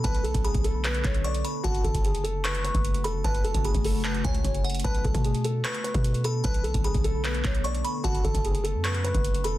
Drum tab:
HH |x-x-x-x-x-x-x---x-x-x-x-x-x-x---|x-x-x-x-x-x-x---x-x-x-x-x-x-x---|x-x-x-x-x-x-o---x-x-x-x-x-x-xxxx|x-x-x-x-x-x-x---x-x-x-x-x-x-x---|
CP |----------------x---x-----------|----------------x---------------|----------------x---------------|----------------x---------------|
BD |o-----o---o---------o-----------|o---o-o---------------o---------|o-----o---o---------o---o-------|o---o-o---------------o---------|

HH |x-x-x-x-x-x-x---x-x-x-x-x-x-x---|x-x-x-x-x-x-x---x-x-x-x-x-x-x---|
CP |----------------x---x-----------|----------------x---------------|
BD |o-----o---o---------o-----------|o---o-o---------------o---------|